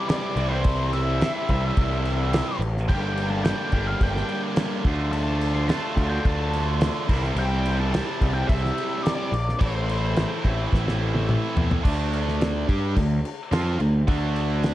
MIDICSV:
0, 0, Header, 1, 5, 480
1, 0, Start_track
1, 0, Key_signature, -1, "minor"
1, 0, Tempo, 559701
1, 552, Time_signature, 4, 2, 24, 8
1, 12642, End_track
2, 0, Start_track
2, 0, Title_t, "Lead electric guitar"
2, 0, Program_c, 0, 29
2, 73, Note_on_c, 0, 74, 104
2, 423, Note_on_c, 0, 72, 92
2, 444, Note_off_c, 0, 74, 0
2, 797, Note_on_c, 0, 76, 84
2, 800, Note_off_c, 0, 72, 0
2, 2204, Note_off_c, 0, 76, 0
2, 2475, Note_on_c, 0, 79, 102
2, 2828, Note_off_c, 0, 79, 0
2, 2831, Note_on_c, 0, 81, 97
2, 2950, Note_off_c, 0, 81, 0
2, 2954, Note_on_c, 0, 79, 91
2, 3317, Note_on_c, 0, 77, 89
2, 3327, Note_off_c, 0, 79, 0
2, 3429, Note_off_c, 0, 77, 0
2, 3454, Note_on_c, 0, 79, 92
2, 3782, Note_off_c, 0, 79, 0
2, 4394, Note_on_c, 0, 81, 103
2, 4731, Note_off_c, 0, 81, 0
2, 4756, Note_on_c, 0, 84, 99
2, 4871, Note_on_c, 0, 81, 95
2, 4881, Note_off_c, 0, 84, 0
2, 5226, Note_off_c, 0, 81, 0
2, 5229, Note_on_c, 0, 79, 86
2, 5364, Note_off_c, 0, 79, 0
2, 5364, Note_on_c, 0, 81, 83
2, 5721, Note_off_c, 0, 81, 0
2, 6338, Note_on_c, 0, 79, 117
2, 6663, Note_off_c, 0, 79, 0
2, 6689, Note_on_c, 0, 81, 108
2, 7148, Note_off_c, 0, 81, 0
2, 7152, Note_on_c, 0, 79, 101
2, 7267, Note_on_c, 0, 76, 101
2, 7278, Note_off_c, 0, 79, 0
2, 7746, Note_off_c, 0, 76, 0
2, 7749, Note_on_c, 0, 74, 100
2, 8241, Note_on_c, 0, 72, 80
2, 8247, Note_off_c, 0, 74, 0
2, 9642, Note_off_c, 0, 72, 0
2, 12642, End_track
3, 0, Start_track
3, 0, Title_t, "Distorted electric guitar"
3, 0, Program_c, 1, 30
3, 0, Note_on_c, 1, 48, 72
3, 0, Note_on_c, 1, 52, 83
3, 0, Note_on_c, 1, 55, 81
3, 0, Note_on_c, 1, 60, 92
3, 0, Note_on_c, 1, 64, 91
3, 295, Note_off_c, 1, 48, 0
3, 299, Note_off_c, 1, 52, 0
3, 304, Note_off_c, 1, 60, 0
3, 306, Note_off_c, 1, 64, 0
3, 322, Note_on_c, 1, 48, 89
3, 324, Note_on_c, 1, 52, 99
3, 325, Note_off_c, 1, 55, 0
3, 328, Note_on_c, 1, 55, 89
3, 337, Note_on_c, 1, 60, 82
3, 344, Note_on_c, 1, 64, 106
3, 1025, Note_off_c, 1, 48, 0
3, 1026, Note_off_c, 1, 52, 0
3, 1032, Note_off_c, 1, 60, 0
3, 1036, Note_off_c, 1, 64, 0
3, 1036, Note_on_c, 1, 48, 75
3, 1039, Note_on_c, 1, 52, 78
3, 1046, Note_off_c, 1, 55, 0
3, 1049, Note_on_c, 1, 55, 90
3, 1052, Note_on_c, 1, 60, 73
3, 1057, Note_on_c, 1, 64, 88
3, 2223, Note_off_c, 1, 48, 0
3, 2224, Note_off_c, 1, 52, 0
3, 2229, Note_off_c, 1, 55, 0
3, 2231, Note_off_c, 1, 60, 0
3, 2233, Note_off_c, 1, 64, 0
3, 2471, Note_on_c, 1, 43, 94
3, 2473, Note_on_c, 1, 50, 92
3, 2482, Note_on_c, 1, 55, 92
3, 2485, Note_on_c, 1, 58, 94
3, 2489, Note_on_c, 1, 62, 97
3, 2497, Note_on_c, 1, 67, 96
3, 3180, Note_off_c, 1, 43, 0
3, 3182, Note_off_c, 1, 50, 0
3, 3186, Note_off_c, 1, 55, 0
3, 3187, Note_off_c, 1, 58, 0
3, 3193, Note_off_c, 1, 67, 0
3, 3202, Note_on_c, 1, 67, 101
3, 3207, Note_off_c, 1, 62, 0
3, 3211, Note_on_c, 1, 58, 84
3, 3211, Note_on_c, 1, 62, 95
3, 3213, Note_on_c, 1, 55, 74
3, 3223, Note_on_c, 1, 50, 78
3, 3227, Note_on_c, 1, 43, 71
3, 4146, Note_off_c, 1, 67, 0
3, 4150, Note_off_c, 1, 58, 0
3, 4150, Note_off_c, 1, 62, 0
3, 4152, Note_off_c, 1, 55, 0
3, 4156, Note_off_c, 1, 50, 0
3, 4159, Note_off_c, 1, 43, 0
3, 4166, Note_on_c, 1, 50, 89
3, 4171, Note_on_c, 1, 57, 96
3, 4180, Note_on_c, 1, 62, 104
3, 4186, Note_on_c, 1, 65, 90
3, 4868, Note_off_c, 1, 50, 0
3, 4870, Note_off_c, 1, 57, 0
3, 4875, Note_off_c, 1, 62, 0
3, 4876, Note_on_c, 1, 50, 73
3, 4878, Note_off_c, 1, 65, 0
3, 4879, Note_on_c, 1, 57, 83
3, 4886, Note_on_c, 1, 62, 82
3, 4895, Note_on_c, 1, 65, 93
3, 6063, Note_off_c, 1, 50, 0
3, 6064, Note_off_c, 1, 57, 0
3, 6067, Note_off_c, 1, 62, 0
3, 6067, Note_on_c, 1, 48, 98
3, 6072, Note_off_c, 1, 65, 0
3, 6079, Note_on_c, 1, 52, 94
3, 6088, Note_on_c, 1, 55, 109
3, 6089, Note_on_c, 1, 60, 102
3, 6095, Note_on_c, 1, 64, 96
3, 6778, Note_off_c, 1, 48, 0
3, 6788, Note_off_c, 1, 55, 0
3, 6800, Note_on_c, 1, 48, 82
3, 6802, Note_off_c, 1, 52, 0
3, 6805, Note_on_c, 1, 52, 71
3, 6813, Note_off_c, 1, 60, 0
3, 6815, Note_on_c, 1, 55, 78
3, 6817, Note_on_c, 1, 60, 79
3, 6819, Note_off_c, 1, 64, 0
3, 6823, Note_on_c, 1, 64, 78
3, 7983, Note_off_c, 1, 48, 0
3, 7986, Note_off_c, 1, 52, 0
3, 7991, Note_off_c, 1, 55, 0
3, 7992, Note_off_c, 1, 60, 0
3, 7995, Note_off_c, 1, 64, 0
3, 8224, Note_on_c, 1, 45, 88
3, 8227, Note_on_c, 1, 52, 100
3, 8234, Note_on_c, 1, 57, 97
3, 8242, Note_on_c, 1, 60, 104
3, 8245, Note_on_c, 1, 64, 93
3, 8935, Note_off_c, 1, 45, 0
3, 8936, Note_off_c, 1, 52, 0
3, 8940, Note_off_c, 1, 57, 0
3, 8943, Note_off_c, 1, 64, 0
3, 8944, Note_off_c, 1, 60, 0
3, 8954, Note_on_c, 1, 64, 83
3, 8955, Note_on_c, 1, 60, 92
3, 8961, Note_on_c, 1, 57, 82
3, 8969, Note_on_c, 1, 52, 79
3, 8978, Note_on_c, 1, 45, 68
3, 10139, Note_off_c, 1, 60, 0
3, 10139, Note_off_c, 1, 64, 0
3, 10141, Note_off_c, 1, 57, 0
3, 10143, Note_off_c, 1, 45, 0
3, 10146, Note_off_c, 1, 52, 0
3, 10146, Note_on_c, 1, 50, 91
3, 10151, Note_on_c, 1, 57, 108
3, 10156, Note_on_c, 1, 62, 114
3, 10862, Note_off_c, 1, 50, 0
3, 10864, Note_off_c, 1, 57, 0
3, 10867, Note_off_c, 1, 62, 0
3, 10874, Note_on_c, 1, 55, 85
3, 10880, Note_on_c, 1, 62, 103
3, 10882, Note_on_c, 1, 67, 114
3, 11106, Note_off_c, 1, 55, 0
3, 11107, Note_on_c, 1, 50, 70
3, 11109, Note_off_c, 1, 62, 0
3, 11110, Note_off_c, 1, 67, 0
3, 11111, Note_on_c, 1, 57, 67
3, 11302, Note_off_c, 1, 50, 0
3, 11304, Note_off_c, 1, 57, 0
3, 11590, Note_on_c, 1, 53, 88
3, 11595, Note_on_c, 1, 60, 92
3, 11600, Note_on_c, 1, 65, 99
3, 11824, Note_off_c, 1, 53, 0
3, 11826, Note_off_c, 1, 60, 0
3, 11829, Note_off_c, 1, 65, 0
3, 11832, Note_on_c, 1, 57, 71
3, 11833, Note_on_c, 1, 50, 58
3, 12023, Note_off_c, 1, 57, 0
3, 12024, Note_off_c, 1, 50, 0
3, 12072, Note_on_c, 1, 50, 87
3, 12075, Note_on_c, 1, 57, 109
3, 12083, Note_on_c, 1, 62, 99
3, 12642, Note_off_c, 1, 50, 0
3, 12642, Note_off_c, 1, 57, 0
3, 12642, Note_off_c, 1, 62, 0
3, 12642, End_track
4, 0, Start_track
4, 0, Title_t, "Picked electric bass"
4, 0, Program_c, 2, 34
4, 308, Note_on_c, 2, 36, 80
4, 1034, Note_off_c, 2, 36, 0
4, 1283, Note_on_c, 2, 36, 106
4, 1461, Note_off_c, 2, 36, 0
4, 1519, Note_on_c, 2, 36, 85
4, 2060, Note_off_c, 2, 36, 0
4, 2223, Note_on_c, 2, 33, 85
4, 2483, Note_on_c, 2, 31, 110
4, 2496, Note_off_c, 2, 33, 0
4, 3023, Note_off_c, 2, 31, 0
4, 3195, Note_on_c, 2, 31, 97
4, 3377, Note_off_c, 2, 31, 0
4, 3435, Note_on_c, 2, 31, 86
4, 3617, Note_off_c, 2, 31, 0
4, 4158, Note_on_c, 2, 38, 73
4, 4881, Note_off_c, 2, 38, 0
4, 5117, Note_on_c, 2, 38, 107
4, 5298, Note_off_c, 2, 38, 0
4, 5361, Note_on_c, 2, 38, 90
4, 5901, Note_off_c, 2, 38, 0
4, 6084, Note_on_c, 2, 36, 74
4, 6262, Note_off_c, 2, 36, 0
4, 6304, Note_on_c, 2, 36, 114
4, 6851, Note_off_c, 2, 36, 0
4, 7045, Note_on_c, 2, 36, 98
4, 7223, Note_off_c, 2, 36, 0
4, 7284, Note_on_c, 2, 36, 94
4, 7462, Note_off_c, 2, 36, 0
4, 7994, Note_on_c, 2, 34, 86
4, 8175, Note_off_c, 2, 34, 0
4, 8242, Note_on_c, 2, 33, 112
4, 8781, Note_off_c, 2, 33, 0
4, 8958, Note_on_c, 2, 33, 106
4, 9137, Note_off_c, 2, 33, 0
4, 9201, Note_on_c, 2, 33, 88
4, 9740, Note_off_c, 2, 33, 0
4, 9920, Note_on_c, 2, 40, 83
4, 10098, Note_off_c, 2, 40, 0
4, 10164, Note_on_c, 2, 38, 88
4, 10844, Note_off_c, 2, 38, 0
4, 10884, Note_on_c, 2, 43, 88
4, 11102, Note_off_c, 2, 43, 0
4, 11120, Note_on_c, 2, 38, 77
4, 11340, Note_off_c, 2, 38, 0
4, 11594, Note_on_c, 2, 41, 104
4, 11816, Note_off_c, 2, 41, 0
4, 11834, Note_on_c, 2, 38, 75
4, 12056, Note_off_c, 2, 38, 0
4, 12078, Note_on_c, 2, 38, 95
4, 12642, Note_off_c, 2, 38, 0
4, 12642, End_track
5, 0, Start_track
5, 0, Title_t, "Drums"
5, 77, Note_on_c, 9, 49, 77
5, 86, Note_on_c, 9, 38, 125
5, 163, Note_off_c, 9, 49, 0
5, 172, Note_off_c, 9, 38, 0
5, 314, Note_on_c, 9, 49, 62
5, 399, Note_off_c, 9, 49, 0
5, 550, Note_on_c, 9, 49, 82
5, 558, Note_on_c, 9, 36, 119
5, 636, Note_off_c, 9, 49, 0
5, 643, Note_off_c, 9, 36, 0
5, 798, Note_on_c, 9, 49, 61
5, 884, Note_off_c, 9, 49, 0
5, 1040, Note_on_c, 9, 49, 75
5, 1049, Note_on_c, 9, 38, 119
5, 1126, Note_off_c, 9, 49, 0
5, 1135, Note_off_c, 9, 38, 0
5, 1275, Note_on_c, 9, 49, 58
5, 1279, Note_on_c, 9, 36, 76
5, 1361, Note_off_c, 9, 49, 0
5, 1365, Note_off_c, 9, 36, 0
5, 1517, Note_on_c, 9, 49, 76
5, 1521, Note_on_c, 9, 36, 106
5, 1603, Note_off_c, 9, 49, 0
5, 1607, Note_off_c, 9, 36, 0
5, 1760, Note_on_c, 9, 49, 63
5, 1846, Note_off_c, 9, 49, 0
5, 2000, Note_on_c, 9, 49, 84
5, 2009, Note_on_c, 9, 38, 103
5, 2086, Note_off_c, 9, 49, 0
5, 2095, Note_off_c, 9, 38, 0
5, 2247, Note_on_c, 9, 49, 58
5, 2332, Note_off_c, 9, 49, 0
5, 2376, Note_on_c, 9, 38, 36
5, 2462, Note_off_c, 9, 38, 0
5, 2484, Note_on_c, 9, 36, 106
5, 2487, Note_on_c, 9, 49, 89
5, 2569, Note_off_c, 9, 36, 0
5, 2572, Note_off_c, 9, 49, 0
5, 2723, Note_on_c, 9, 49, 64
5, 2808, Note_off_c, 9, 49, 0
5, 2956, Note_on_c, 9, 49, 79
5, 2964, Note_on_c, 9, 38, 113
5, 3041, Note_off_c, 9, 49, 0
5, 3050, Note_off_c, 9, 38, 0
5, 3189, Note_on_c, 9, 49, 61
5, 3197, Note_on_c, 9, 36, 80
5, 3275, Note_off_c, 9, 49, 0
5, 3283, Note_off_c, 9, 36, 0
5, 3437, Note_on_c, 9, 49, 79
5, 3439, Note_on_c, 9, 36, 108
5, 3523, Note_off_c, 9, 49, 0
5, 3525, Note_off_c, 9, 36, 0
5, 3570, Note_on_c, 9, 38, 37
5, 3656, Note_off_c, 9, 38, 0
5, 3675, Note_on_c, 9, 49, 56
5, 3761, Note_off_c, 9, 49, 0
5, 3912, Note_on_c, 9, 49, 83
5, 3920, Note_on_c, 9, 38, 125
5, 3998, Note_off_c, 9, 49, 0
5, 4006, Note_off_c, 9, 38, 0
5, 4157, Note_on_c, 9, 49, 59
5, 4159, Note_on_c, 9, 36, 107
5, 4243, Note_off_c, 9, 49, 0
5, 4244, Note_off_c, 9, 36, 0
5, 4397, Note_on_c, 9, 49, 80
5, 4482, Note_off_c, 9, 49, 0
5, 4642, Note_on_c, 9, 49, 67
5, 4728, Note_off_c, 9, 49, 0
5, 4880, Note_on_c, 9, 49, 76
5, 4888, Note_on_c, 9, 38, 102
5, 4966, Note_off_c, 9, 49, 0
5, 4974, Note_off_c, 9, 38, 0
5, 5121, Note_on_c, 9, 36, 74
5, 5123, Note_on_c, 9, 49, 58
5, 5207, Note_off_c, 9, 36, 0
5, 5209, Note_off_c, 9, 49, 0
5, 5362, Note_on_c, 9, 36, 104
5, 5362, Note_on_c, 9, 49, 65
5, 5448, Note_off_c, 9, 36, 0
5, 5448, Note_off_c, 9, 49, 0
5, 5603, Note_on_c, 9, 49, 67
5, 5689, Note_off_c, 9, 49, 0
5, 5838, Note_on_c, 9, 49, 85
5, 5847, Note_on_c, 9, 38, 112
5, 5924, Note_off_c, 9, 49, 0
5, 5933, Note_off_c, 9, 38, 0
5, 6081, Note_on_c, 9, 36, 105
5, 6081, Note_on_c, 9, 49, 90
5, 6167, Note_off_c, 9, 36, 0
5, 6167, Note_off_c, 9, 49, 0
5, 6203, Note_on_c, 9, 38, 36
5, 6289, Note_off_c, 9, 38, 0
5, 6316, Note_on_c, 9, 49, 78
5, 6402, Note_off_c, 9, 49, 0
5, 6565, Note_on_c, 9, 49, 67
5, 6651, Note_off_c, 9, 49, 0
5, 6808, Note_on_c, 9, 49, 82
5, 6816, Note_on_c, 9, 38, 107
5, 6893, Note_off_c, 9, 49, 0
5, 6902, Note_off_c, 9, 38, 0
5, 7044, Note_on_c, 9, 36, 78
5, 7045, Note_on_c, 9, 49, 66
5, 7130, Note_off_c, 9, 36, 0
5, 7131, Note_off_c, 9, 49, 0
5, 7284, Note_on_c, 9, 36, 110
5, 7285, Note_on_c, 9, 49, 87
5, 7370, Note_off_c, 9, 36, 0
5, 7371, Note_off_c, 9, 49, 0
5, 7418, Note_on_c, 9, 38, 41
5, 7504, Note_off_c, 9, 38, 0
5, 7529, Note_on_c, 9, 49, 72
5, 7615, Note_off_c, 9, 49, 0
5, 7767, Note_on_c, 9, 49, 83
5, 7776, Note_on_c, 9, 38, 113
5, 7853, Note_off_c, 9, 49, 0
5, 7862, Note_off_c, 9, 38, 0
5, 8006, Note_on_c, 9, 49, 62
5, 8092, Note_off_c, 9, 49, 0
5, 8136, Note_on_c, 9, 38, 34
5, 8221, Note_off_c, 9, 38, 0
5, 8239, Note_on_c, 9, 49, 84
5, 8241, Note_on_c, 9, 36, 115
5, 8324, Note_off_c, 9, 49, 0
5, 8327, Note_off_c, 9, 36, 0
5, 8484, Note_on_c, 9, 49, 69
5, 8570, Note_off_c, 9, 49, 0
5, 8716, Note_on_c, 9, 49, 68
5, 8725, Note_on_c, 9, 38, 111
5, 8802, Note_off_c, 9, 49, 0
5, 8811, Note_off_c, 9, 38, 0
5, 8960, Note_on_c, 9, 36, 78
5, 8962, Note_on_c, 9, 49, 61
5, 9046, Note_off_c, 9, 36, 0
5, 9048, Note_off_c, 9, 49, 0
5, 9200, Note_on_c, 9, 36, 98
5, 9211, Note_on_c, 9, 38, 59
5, 9286, Note_off_c, 9, 36, 0
5, 9296, Note_off_c, 9, 38, 0
5, 9332, Note_on_c, 9, 38, 69
5, 9418, Note_off_c, 9, 38, 0
5, 9558, Note_on_c, 9, 48, 66
5, 9644, Note_off_c, 9, 48, 0
5, 9681, Note_on_c, 9, 47, 88
5, 9767, Note_off_c, 9, 47, 0
5, 9921, Note_on_c, 9, 43, 92
5, 10007, Note_off_c, 9, 43, 0
5, 10045, Note_on_c, 9, 43, 101
5, 10131, Note_off_c, 9, 43, 0
5, 10162, Note_on_c, 9, 36, 113
5, 10164, Note_on_c, 9, 49, 71
5, 10164, Note_on_c, 9, 57, 102
5, 10248, Note_off_c, 9, 36, 0
5, 10250, Note_off_c, 9, 49, 0
5, 10250, Note_off_c, 9, 57, 0
5, 10406, Note_on_c, 9, 49, 65
5, 10492, Note_off_c, 9, 49, 0
5, 10534, Note_on_c, 9, 38, 33
5, 10620, Note_off_c, 9, 38, 0
5, 10645, Note_on_c, 9, 49, 84
5, 10654, Note_on_c, 9, 38, 115
5, 10731, Note_off_c, 9, 49, 0
5, 10740, Note_off_c, 9, 38, 0
5, 10883, Note_on_c, 9, 36, 104
5, 10884, Note_on_c, 9, 49, 64
5, 10968, Note_off_c, 9, 36, 0
5, 10970, Note_off_c, 9, 49, 0
5, 11118, Note_on_c, 9, 49, 86
5, 11121, Note_on_c, 9, 36, 84
5, 11204, Note_off_c, 9, 49, 0
5, 11207, Note_off_c, 9, 36, 0
5, 11364, Note_on_c, 9, 49, 65
5, 11450, Note_off_c, 9, 49, 0
5, 11598, Note_on_c, 9, 49, 84
5, 11607, Note_on_c, 9, 38, 114
5, 11684, Note_off_c, 9, 49, 0
5, 11693, Note_off_c, 9, 38, 0
5, 11834, Note_on_c, 9, 49, 55
5, 11920, Note_off_c, 9, 49, 0
5, 12072, Note_on_c, 9, 49, 74
5, 12076, Note_on_c, 9, 36, 112
5, 12158, Note_off_c, 9, 49, 0
5, 12162, Note_off_c, 9, 36, 0
5, 12316, Note_on_c, 9, 49, 58
5, 12402, Note_off_c, 9, 49, 0
5, 12549, Note_on_c, 9, 49, 69
5, 12558, Note_on_c, 9, 38, 108
5, 12635, Note_off_c, 9, 49, 0
5, 12642, Note_off_c, 9, 38, 0
5, 12642, End_track
0, 0, End_of_file